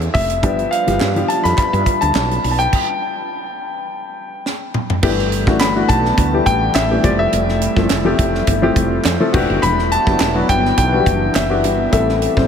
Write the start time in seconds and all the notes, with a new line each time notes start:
Already playing: F3 A3 C4 E4 A4
0.01 closed hi-hat
0.14 F1 E5, kick, open hi-hat
0.30 closed hi-hat
0.43 G1 F3 G3 B3 D4 F4 G4 B4, kick, closed hi-hat
0.59 closed hi-hat
0.71 F5, closed hi-hat
0.87 G1 F3 G3 B3 D4 G4, snare, closed hi-hat
1.00 G2, snare, clap
1.16 F3 G3 B3 D4 G4, closed hi-hat
1.28 A5, closed hi-hat
1.44 F2 B5, snare, closed hi-hat
1.57 B5, kick, clap, closed hi-hat
1.73 G2, closed hi-hat
1.86 kick, closed hi-hat
2.01 D2 A5, closed hi-hat
2.15 B1, snare, clap
2.31 closed hi-hat
2.44 B1, open hi-hat
2.51 A5
2.59 G5, closed hi-hat
2.73 kick, crash
4.46 snare
4.74 mid tom
4.90 floor tom
5.02 G1 E3 G3 A3 B3 D4 G4, kick, crash
5.19 snare
5.32 closed hi-hat
5.46 A1 E3 A3 B3 D4 F#4, kick, snare
5.60 G1 B5, snare, clap, closed hi-hat
5.75 E3 A3 B3 D4 F#4
5.88 B1 A5, kick, closed hi-hat
6.05 snare
6.17 D2, kick, closed hi-hat
6.33 E3 A3 B3 D4 G4
6.46 A1 G5, kick, closed hi-hat
6.75 A1 E5, snare, clap, closed hi-hat
6.90 E3 A3 B3 D4 G4
7.03 F1 F3 A3 C4 E4 G4 D5, kick, closed hi-hat
7.19 E5
7.33 F1, closed hi-hat
7.49 snare
7.61 closed hi-hat
7.76 G1 F3 A3 C4 E4 A4, kick, snare
7.89 F1, snare, clap, closed hi-hat
8.04 F3 A3 C4 E4 G4
8.19 F1, kick, closed hi-hat
8.35 snare
8.47 G1, kick, closed hi-hat
8.62 F3 A3 C4 E4 G4
8.76 F1, kick, closed hi-hat
9.05 F2, snare, clap, closed hi-hat
9.20 F3 A3 C4 E4 A4
9.33 E1 E3 B3 D4 E4 F#4 G4, kick, crash
9.50 F#1
9.62 E1 B5, closed hi-hat
9.79 snare
9.92 A5, closed hi-hat
10.06 F#1 F#3 B3 D4 E4 G4, kick, snare
10.20 E1, snare, clap, closed hi-hat
10.34 F#3 B3 D4 E4 F#4
10.49 G1 G5, kick, closed hi-hat
10.66 snare
10.77 B1 G5, kick, closed hi-hat
10.92 G3 B3 D4 E4 F#4
11.00 G4
11.06 F#1, kick, closed hi-hat
11.35 F#1 E5, snare, clap, closed hi-hat
11.50 B3 D4 E4 F#4 G4
11.64 G1, closed hi-hat
11.92 A1 G3 A3 C4 E4 G4 A4 E5, kick, closed hi-hat
12.09 snare
12.22 closed hi-hat
12.36 A1 G3 A3 C4 E4 C5, kick, snare